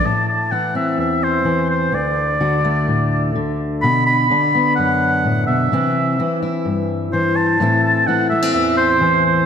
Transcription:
<<
  \new Staff \with { instrumentName = "Oboe" } { \time 4/4 \key a \dorian \tempo 4 = 127 a''8 a''8 fis''8 e''8 e''8 c''4 c''8 | d''2. r4 | b''8 b''4. fis''4. e''8~ | e''4. r4. c''8 a''8~ |
a''8 a''8 fis''8 e''8 e''8 c''4 c''8 | }
  \new Staff \with { instrumentName = "Steel-string acoustic guitar" } { \clef bass \time 4/4 \key a \dorian << { r4 e'8 c'2~ c'8 | r4 fis'8 a2~ a8 | r4 d'8 b2~ b8 | <e c' e'>4 e'8 e'2~ e'8 |
<e a c' e'>4 e'8 a16 c'2~ c'16 | } \\ { a,4 e4 e,4 e4 | d,4 d4 a,4 d4 | b,4 d4 fis,4 a,8 b,8 | c4 e4 g,4 e4 |
a,4 e4 e,4 e4 | } >> }
>>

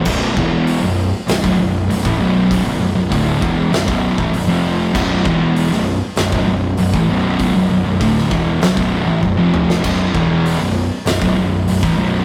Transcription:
<<
  \new Staff \with { instrumentName = "Distorted electric guitar" } { \clef bass \time 4/4 \key b \minor \tempo 4 = 98 <b,, fis, b,>8 <e, b, e>8. <b,, fis,>8 r16 <b,, fis,>16 <b,, fis,>16 <b,, fis,>8 <b,, fis,>16 <a, e>16 <b,, fis, b,>8~ | <b,, fis, b,>16 <b,, fis,>16 <b,, fis,>16 <b,, fis,>16 <d, a, d>8 <e, b, e>8 <b,, fis,>16 <b,, fis, b,>8 <a, e>16 <b,, fis,>16 <eis, c eis>8. | <b,, fis, b,>8 <e, b, e>8. <b,, fis,>8 r16 <b,, fis,>16 <b,, fis,>16 <b,, fis,>8 <b,, fis,>16 <a, e>16 <b,, fis, b,>8~ | <b,, fis, b,>16 <b,, fis,>16 <b,, fis,>16 <b,, fis,>16 <d, a, d>8 <e, b, e>8 <b,, fis,>16 <b,, fis, b,>8 <a, e>16 <b,, fis,>16 <eis, c eis>8. |
<b,, fis, b,>8 <e, b, e>8. <b,, fis,>8 r16 <b,, fis,>16 <b,, fis,>16 <b,, fis,>8 <b,, fis,>16 <a, e>16 <b,, fis, b,>8 | }
  \new Staff \with { instrumentName = "Distorted electric guitar" } { \clef bass \time 4/4 \key b \minor <b,, fis, b,>8 <e, b, e>8. <b,, fis,>8 r16 <b,, fis,>16 <b,, fis,>16 <b,, fis,>8 <b,, fis,>16 <a, e>16 <b,, fis, b,>8~ | <b,, fis, b,>16 <b,, fis,>16 <b,, fis,>16 <b,, fis,>16 <d, a, d>8 <e, b, e>8 <b,, fis,>16 <b,, fis, b,>8 <a, e>16 <b,, fis,>16 <eis, c eis>8. | <b,, fis, b,>8 <e, b, e>8. <b,, fis,>8 r16 <b,, fis,>16 <b,, fis,>16 <b,, fis,>8 <b,, fis,>16 <a, e>16 <b,, fis, b,>8~ | <b,, fis, b,>16 <b,, fis,>16 <b,, fis,>16 <b,, fis,>16 <d, a, d>8 <e, b, e>8 <b,, fis,>16 <b,, fis, b,>8 <a, e>16 <b,, fis,>16 <eis, c eis>8. |
<b,, fis, b,>8 <e, b, e>8. <b,, fis,>8 r16 <b,, fis,>16 <b,, fis,>16 <b,, fis,>8 <b,, fis,>16 <a, e>16 <b,, fis, b,>8 | }
  \new Staff \with { instrumentName = "Picked electric bass" } { \clef bass \time 4/4 \key b \minor b,,,8 e,,8. b,,,8 r16 b,,,16 b,,,16 b,,,8 b,,,16 a,,16 b,,,8~ | b,,,16 b,,,16 b,,,16 b,,,16 d,,8 e,,8 b,,,16 b,,,8 a,,16 b,,,16 eis,,8. | b,,,8 e,,8. b,,,8 r16 b,,,16 b,,,16 b,,,8 b,,,16 a,,16 b,,,8~ | b,,,16 b,,,16 b,,,16 b,,,16 d,,8 e,,8 b,,,16 b,,,8 a,,16 b,,,16 eis,,8. |
b,,,8 e,,8. b,,,8 r16 b,,,16 b,,,16 b,,,8 b,,,16 a,,16 b,,,8 | }
  \new DrumStaff \with { instrumentName = "Drums" } \drummode { \time 4/4 <cymc bd>8 bd8 hho4 <hho sn>16 bd8. hho16 bd8. | <hho bd>4 <hho bd>8 bd8 <hho sn>16 bd8 bd16 hho4 | <cymc bd>8 bd8 hho16 sn8. <hho sn>16 bd8. hho16 bd8. | <hho bd>4 <hho bd>16 sn16 bd8 <hho sn>16 bd8. bd8 toml16 sn16 |
<cymc bd>8 bd8 hho4 <hho sn>16 bd8. hho16 bd8. | }
>>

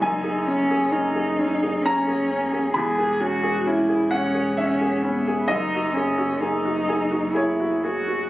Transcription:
<<
  \new Staff \with { instrumentName = "Felt piano" } { \time 3/4 \key fis \mixolydian \tempo 4 = 66 << { gis''2 ais''4 | b''4. fis''8 e''4 | dis''2 cis''4 | } \\ { fis,16 gis'16 cis'16 gis'16 cis'16 gis'16 cis'16 gis'16 cis'16 gis'16 cis'16 gis'16 | e,16 gis'16 cis'16 gis'16 cis'16 gis'16 cis'16 gis'16 cis'16 gis'16 cis'16 gis'16 | fis,16 fis'16 gis'16 fis'16 gis'16 fis'16 gis'16 fis'16 gis'16 fis'16 gis'16 fis'16 | } >> }
  \new Staff \with { instrumentName = "Cello" } { \time 3/4 \key fis \mixolydian dis'8 cis'8 dis'4 cis'4 | gis'8 fis'8 e'8 cis'8 cis'8 b8 | dis'8 cis'8 dis'4 e'8 fis'8 | }
  \new Staff \with { instrumentName = "Double bass" } { \clef bass \time 3/4 \key fis \mixolydian fis,,2. | e,,2. | fis,,2. | }
>>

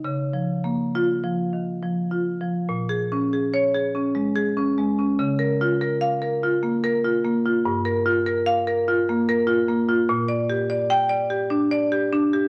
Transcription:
\new Staff \with { instrumentName = "Marimba" } { \time 3/4 \key bes \dorian \tempo 4 = 73 << { r4 f'8 r4. | r4 des''8 r4. | r4 f''8 r4. | r4 f''8 r4. |
r4 g''8 r4. | } \\ { \tuplet 3/2 { des8 f8 bes8~ bes8 f8 ees8 f8 f'8 f8 } | bes,16 aes'16 des'16 aes'8 aes'16 des'16 aes16 aes'16 des'16 aes16 des'16 | des16 bes'16 f'16 bes'8 bes'16 f'16 bes16 bes'16 f'16 bes16 f'16 | g,16 bes'16 f'16 bes'8 bes'16 f'16 bes16 bes'16 f'16 bes16 f'16 |
bes,16 d''16 g'16 d''8 d''16 g'16 d'16 d''16 g'16 d'16 g'16 | } >> }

